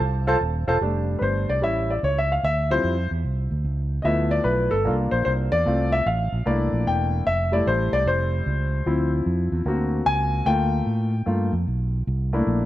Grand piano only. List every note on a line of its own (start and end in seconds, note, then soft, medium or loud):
0.27 0.35 F4 medium
0.27 0.35 A4 medium
0.27 0.35 C5 medium
0.27 0.35 A5 medium
0.67 0.75 F4 medium
0.67 0.75 A4 medium
0.67 0.75 C5 medium
0.67 0.76 A5 medium
0.81 1.58 G3 soft
0.81 1.59 A3 soft
0.81 1.59 D4 medium
1.19 1.22 B4 medium
1.19 1.50 C5 medium
1.50 1.64 D5 medium
1.62 1.93 G3 medium
1.62 1.93 C#4 medium
1.62 1.93 E4 medium
1.62 1.90 E5 medium
1.90 2.04 D5 medium
1.90 1.93 E5 medium
2.04 2.16 C#5 medium
2.18 2.31 E5 medium
2.32 2.45 F5 medium
2.44 2.71 E5 loud
2.71 2.94 F3 medium
2.71 2.94 G3 soft
2.71 2.94 C4 soft
2.71 2.94 E4 medium
2.71 3.08 C5 loud
4.02 4.68 F3 medium
4.02 4.68 A3 medium
4.02 4.69 B3 soft
4.02 4.69 E4 medium
4.02 4.05 D#5 medium
4.02 4.32 E5 medium
4.31 4.45 D5 medium
4.44 4.72 B4 medium
4.71 4.92 A4 medium
4.85 5.62 A#3 medium
4.85 5.62 D4 soft
4.85 5.62 F4 medium
5.11 5.23 C5 medium
5.25 5.31 C5 medium
5.52 5.93 D5 loud
5.66 5.96 A3 medium
5.66 5.96 C4 soft
5.66 5.97 F4 medium
5.92 6.07 E5 medium
6.07 6.48 F5 medium
6.45 7.22 A3 medium
6.45 7.23 A#3 soft
6.45 7.23 D4 soft
6.45 7.23 E4 medium
6.45 6.88 D5 medium
6.87 7.28 G5 medium
7.27 7.54 E5 medium
7.52 8.83 G3 soft
7.52 8.83 A3 soft
7.52 8.83 E4 medium
7.52 7.67 D5 medium
7.67 7.94 C5 medium
7.93 8.07 D5 loud
8.07 9.10 C5 medium
8.86 9.63 F3 medium
8.86 9.63 C4 soft
8.86 9.63 E4 medium
9.66 10.43 A#3 soft
9.66 10.43 C4 soft
9.66 10.44 F#4 medium
10.06 10.48 G#5 loud
10.46 11.10 A3 medium
10.46 11.10 A#3 soft
10.46 11.10 F4 medium
10.46 11.49 G5 loud
11.26 11.50 A3 soft
11.26 11.51 A#3 soft
11.26 11.51 F4 medium
12.33 12.65 A3 medium
12.33 12.65 A#3 medium
12.33 12.65 D4 soft
12.33 12.65 E4 medium